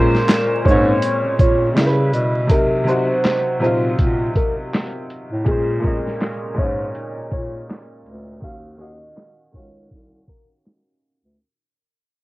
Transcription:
Already playing: A#2 G#3 C#4 A#4 C5
0.15 snare
0.29 snare, clap, closed hi-hat
0.65 G#2 A#2 G#3 C#5, kick, shaker
0.69 C4 C#5
0.75 C#4
1.02 closed hi-hat
1.24 A#2
1.39 A#2 C#5, kick, closed hi-hat, shaker
1.73 C#3 G3
1.78 E4 A#4, snare, clap, closed hi-hat
1.86 B4
2.13 B2, closed hi-hat, shaker
2.47 C3 F#3, kick, closed hi-hat
2.51 D#4 A#4
2.84 C3 F#3, shaker
2.88 D#4 F#4 C5
3.25 snare, clap, closed hi-hat
3.60 A#2 C3 F#3 C5, shaker
3.64 D#4 F4
3.99 A#2, kick, closed hi-hat
4.36 A#4, kick, closed hi-hat, shaker
4.74 snare, clap, closed hi-hat
5.10 closed hi-hat, shaker
5.32 A2
5.45 A#2 G#3 G#4, kick, closed hi-hat
5.49 C#4 C5
5.80 A#2 G#3
5.84 C#4 A#4 D#5, kick
6.07 snare
6.22 snare, clap, closed hi-hat
6.54 A#2 G#3, kick
6.58 G#2 C#4 D#4 C#5
6.95 closed hi-hat
7.17 A#2
7.32 A#2 C#5, kick, closed hi-hat
7.70 snare, clap, closed hi-hat
8.05 D2, closed hi-hat
8.40 D#2 D#3 C#4 F5, kick, closed hi-hat
8.44 F#4 F5
8.76 D#3 C#4
8.80 F#4 D#5 F5
9.17 snare, clap
9.52 C#2 D#3 C#4 C#5, kick
9.56 F#4 F5
9.91 C2, kick
10.28 A#4, kick
10.67 snare, clap
11.24 D2

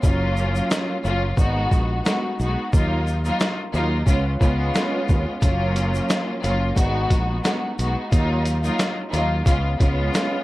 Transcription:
0.03 F#1 F#3 A#3 C#4 F4, kick, shaker
0.37 shaker
0.56 shaker
0.71 snare, shaker
1.04 F#1 F#3 A#3 C#4 F4, shaker
1.37 G#1 G#3 B3 D#4 F#4, kick, shaker
1.71 A#1, kick, shaker
2.05 G#3 B3 D#4 F#4, snare, shaker
2.39 B1 G#3 B3 D#4 F#4, shaker
2.72 D#2 F#3 A#3 D#4 F4, kick, shaker
3.07 shaker
3.24 F#3 A#3 D#4 F4, shaker
3.40 snare, shaker
3.74 D#2 F#3 A#3 D#4 F4, shaker
4.06 C#2 G#3 B3 C#4 F4, kick, shaker
4.41 C#2 G#3 B3 C#4 F4, kick, shaker
4.75 snare, shaker
5.09 D#2, kick, shaker
5.42 F#1 F#3 A#3 C#4 F4, kick, closed hi-hat, shaker
5.76 closed hi-hat, shaker
5.95 shaker
6.10 snare, closed hi-hat, shaker
6.43 F#1 F#3 A#3 C#4 F4, closed hi-hat, shaker
6.76 G#1 G#3 B3 D#4 F#4, kick, closed hi-hat, shaker
7.10 A#1, kick, closed hi-hat, shaker
7.44 G#3 B3 D#4 F#4, snare, closed hi-hat, shaker
7.78 B1 G#3 B3 D#4 F#4, closed hi-hat, shaker
8.11 D#2 F#3 A#3 D#4 F4, kick, closed hi-hat, shaker
8.46 closed hi-hat, shaker
8.63 F#3 A#3 D#4 F4, shaker
8.80 snare, closed hi-hat, shaker
9.13 D#2 F#3 A#3 D#4 F4, closed hi-hat, shaker
9.46 C#2 G#3 B3 C#4 F4, kick, closed hi-hat, shaker
9.79 C#2 G#3 B3 C#4 F4, kick, closed hi-hat, shaker
10.14 snare, closed hi-hat, shaker

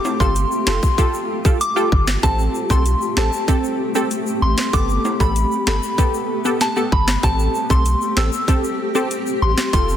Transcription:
Already playing: A3 F4 G4 A4
0.05 high timbale, shaker
0.20 G1 F4 G4 A4 C6, kick, shaker
0.36 closed hi-hat, shaker
0.51 shaker
0.67 F1 F4 G4 A4 C6, cross-stick, snare
0.83 kick, shaker
0.98 F4 G4 A4, kick, closed hi-hat, shaker
1.14 shaker
1.45 F4 G4 A4, kick, shaker
1.61 D6, closed hi-hat, shaker
1.76 F4 G4 A4, shaker
1.92 G1, kick
2.07 cross-stick, snare, shaker
2.23 A1 C4 G4 A4 A5, kick, closed hi-hat, shaker
2.39 shaker
2.55 shaker
2.70 B1 C4 G4 A4 C6, kick, shaker
2.86 closed hi-hat, shaker
3.01 shaker
3.17 A1 C4 G4 A4 A5, cross-stick, snare
3.33 shaker
3.48 C4 G4 A4, kick, closed hi-hat, shaker
3.64 shaker
3.95 C4 G4 A4, shaker
4.11 closed hi-hat, shaker
4.27 shaker
4.42 A1 C6
4.58 cross-stick, snare, shaker
4.73 G1 B3 G4 A4 D6, kick, closed hi-hat, shaker
4.89 shaker
5.05 high timbale, shaker
5.20 A1 B3 G4 A4 B5, kick, shaker
5.36 closed hi-hat, shaker
5.52 shaker
5.67 G1 B3 G4 A4 B5, cross-stick, snare
5.83 shaker
5.98 B3 G4 A4, kick, closed hi-hat, shaker
6.14 shaker
6.45 B3 G4 A4, shaker
6.61 A5, snare, closed hi-hat, shaker
6.76 B3 G4 A4, shaker
6.92 G1 B5, kick
7.08 cross-stick, snare, shaker
7.23 A1 C4 G4 A4 A5, kick, closed hi-hat, shaker
7.39 shaker
7.55 shaker
7.70 B1 C4 G4 A4 C6, kick, shaker
7.86 closed hi-hat, shaker
8.01 shaker
8.17 A1 C4 G4 A4 E6, cross-stick, snare
8.33 shaker
8.48 C4 G4 A4, kick, closed hi-hat, shaker
8.64 shaker
8.95 C4 G4 A4, shaker
9.11 closed hi-hat, shaker
9.27 shaker
9.42 A1 C6
9.58 cross-stick, snare, shaker
9.73 F1 F4 G4 A4 C6, kick, closed hi-hat, shaker
9.89 shaker

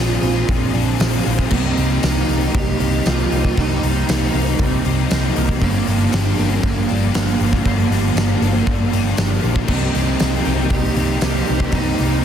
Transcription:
Already playing: A#1 F3 G#3 A#3 C4 F4
0.00 D4 G#4
0.22 A#1 F3 A#3 C4 D4 G#4, open hi-hat
0.47 A#1 A#2 D3 F3 G#3 C4 F4, kick, open hi-hat
0.74 A#1 F3 A#3 D4 G#4, open hi-hat
0.99 A#1 D3 F3 G#3 A#3 C4 D4 F4 G#4, snare, open hi-hat, tambourine
1.25 A#1 F3 G#3 C4 F4, open hi-hat
1.39 kick
1.51 C2 C3 G3 A#3 C4 D#4 G4, kick, crash
1.77 C2 G3 A#3 C4 D#4 G4, open hi-hat
2.03 C2 G3 C4 D#4 G4, snare, open hi-hat, tambourine
2.28 C2 A#3 C4 D#4 G4, open hi-hat
2.53 C2 C3 G3 A#3 D#4 G4, kick, open hi-hat
2.80 C2 C4 D#4 G4, open hi-hat
3.05 C2 C3 G3 A#3 C4 D#4 F4 G4, snare, open hi-hat, tambourine
3.32 C2 G3 A#3 D#4, open hi-hat
3.45 kick
3.57 C2 C3 G3 A#3 C4 D#4 G4, kick, open hi-hat
3.83 C2 G3 A#3 C4 D#4 G4, open hi-hat
4.08 C2 G3 C4 D#4 G4, snare, open hi-hat, tambourine
4.34 C2 A#3 C4 D#4 G4, open hi-hat
4.59 C2 C3 G3 A#3 D#4, kick, open hi-hat
4.85 C2 C4 D#4 G4, open hi-hat
5.11 C2 C3 G3 A#3 C4 D#4 G4, snare, open hi-hat, tambourine
5.35 C2 G3 A#3 D#4, open hi-hat
5.49 kick
5.60 G1 G2 D3 F3 G3 A#3 D4 G4, kick, open hi-hat
5.86 G1 F3 G3 A#3 D4 G4, snare, open hi-hat
6.12 G1 G3 A#3 D4 G4, snare, open hi-hat, tambourine
6.38 G1 G3 A#3 D4 G4, open hi-hat
6.62 G1 G2 D3 F3 A#3 D4, kick, open hi-hat
6.89 G1 G3 A#3 D4 G4, open hi-hat
7.13 G1 D3 F3 G3 A#3 D4 G4, snare, open hi-hat, tambourine
7.39 G1 F3 A#3 D4, open hi-hat
7.53 kick, snare
7.64 G1 G2 D3 F3 G3 A#3 D4 G4, kick, open hi-hat
7.90 G1 F3 G3 A#3 D4 G4, snare, open hi-hat
8.16 G1 G3 A#3 D4 G4, snare, open hi-hat, tambourine
8.41 G1 G3 A#3 D4 G4, open hi-hat
8.66 G1 G2 D3 F3 A#3 D4, kick, open hi-hat
8.92 G1 G3 A#3 D4 G4, open hi-hat
9.16 G1 D3 F3 G3 A#3 D4 G4, snare, open hi-hat, tambourine
9.42 A#1 F3 A#3 D4, open hi-hat
9.56 kick
9.68 C2 C3 G3 A#3 C4 D#4 G4, kick, crash
9.93 C2 G3 A#3 C4 D#4 G4, snare, open hi-hat
10.19 C2 G3 C4 D#4 G4, snare, open hi-hat, tambourine
10.45 C2 C3 G3 A#3 C4 D#4 G4, open hi-hat
10.70 C2 C3 G3 A#3 D#4 G4, kick, open hi-hat
10.96 C2 C4 D#4 G4, open hi-hat
11.21 C2 C3 G3 A#3 C4 D#4 G4, snare, open hi-hat, tambourine
11.46 C2 G3 A#3 D#4, open hi-hat
11.60 kick
11.72 C2 C3 G3 A#3 C4 D#4 G4, kick, open hi-hat
11.98 C2 G3 A#3 C4 D#4 G4, snare, open hi-hat

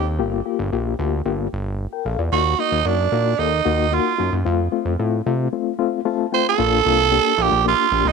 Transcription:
Already playing: D#2 C4 D#4 G4
0.19 G1 A#3 F4 G4
0.46 A#3 F4 G4
0.59 G1
0.72 A#1 A#3 F4 G4
0.99 D2 A#3 F4 G4
1.25 G1 A#3 F4 G4
1.53 G1
1.93 A#4 G5
2.05 A#1 A4 F5
2.19 E2 F4 D5
2.32 D#2 A#3 D#4 F#4
2.59 A#3 D#4 F#4
2.72 D#2
2.85 F#2 A#3 D4 D#4 F#4
3.12 A#2 A#3 D#4 F#4
3.38 D#2 A#3 D#4 A4
3.65 D#2 A#3 D#4 F#4
3.92 A#3 D#4 F4 F#4
4.18 F#2 A#3 D#4 F#4
4.33 F#2
4.45 F2 A3 C4 F4
4.72 A3 C4 F4
4.85 F2
4.99 A2 A3 C4 F4
5.26 C3 A3 C4 F4
5.52 A3 C4 F4
5.79 A3 C4 F4
6.05 A3 C4 F4 A5
6.32 A3 C4 F4 C5 G5
6.49 A4
6.58 A#1 A#3 D4 F4
6.85 C2 A#3 D4 F4
7.12 A#3 D4 G4
7.38 A#1 A#3 D4 F4 G4
7.52 A#1
7.65 A#3 D4 F4 G4
7.92 A#1 A#3 D4 G4
8.05 C2 D#4

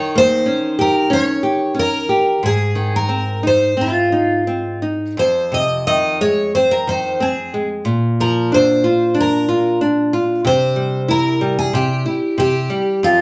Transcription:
Already playing: D#3 C#5
0.15 A#3 C5
0.46 C#4
0.79 G4 A#4
1.10 C#4 C#5
1.43 G4
1.75 C#4
1.79 A#4
2.09 G4
2.43 G#2 G#4
2.75 D#3
2.96 A#4
3.09 C4
3.43 D#4
3.47 C5
3.77 C4
3.81 F4
4.12 D#4
4.47 C4
4.82 D#4
5.17 F2 C5
5.52 C3 D#5
5.87 D#3 D#5
6.21 G#3 C#5
6.55 C4 C5
6.71 A#4
6.87 D#3 C5
7.20 C4 G#4
7.54 G#3
7.85 A#2
8.20 F3 A#4
8.52 D4 C5
8.84 F4
9.14 D4
9.20 A#4
9.49 F4
9.81 D4
10.13 F4
10.45 C3 C5
10.76 G3
11.08 E4 A#4
11.41 G3
11.59 G#4
11.73 C3 G4
12.06 E4
12.38 C3 G4
12.70 G3
13.03 F2 F4

